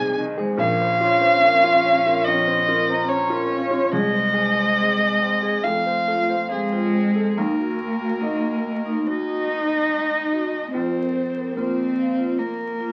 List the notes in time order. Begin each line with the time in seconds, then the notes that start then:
Already playing: C2 D#4 G#4 C5 G#5
0.00 C3
0.17 D#3 D#4 D#5
0.38 G#3 G#4 C5
0.58 A#1 C#4 A#4 F5
0.80 C5
1.01 F4 C#5
1.21 C5 C#5
1.43 C#4 A#4
1.64 F4 F5
1.85 C#4 F5
2.06 F4 A#4
2.24 F2 C#5 D#5
2.47 C5
2.68 F4 A#4
2.89 C5 A#5
3.08 C#4 C#5 A#5
3.30 F4 A#4
3.50 C#4 F5
3.71 F4 C#5
3.92 C2 G#3 G#4 D#5
4.13 C5
4.34 G#4 C5
4.55 C5
4.77 C4 G#4
4.99 G#4 D#5
5.21 C4 D#5
5.42 G#4
5.64 F2 A3 A4 F5
5.86 C5
6.08 F4 A4
6.30 C5 F5
6.51 G#3 C4 G#4 F5
6.72 F4 C5
6.94 C4 C5
7.16 A4
7.37 D#2 A#3 D#4 A#4
7.58 F#4
7.80 A#4
8.01 F#4
8.21 A#3 D#4 F#4 D#5
8.65 D#5
8.86 D#4
9.06 D#4 F#4 D#5
9.28 F#4
9.49 D#4
9.70 D#5
9.90 D#5
10.11 D#4
10.32 F#4
10.53 D#5
10.73 F2 C4 F4 C5
10.95 A#4
11.16 C5
11.37 A#4
11.56 A#3 C4 F4 A#4 C5
11.98 F5
12.18 F4
12.38 A#3 A#4
12.60 A#4
12.80 F4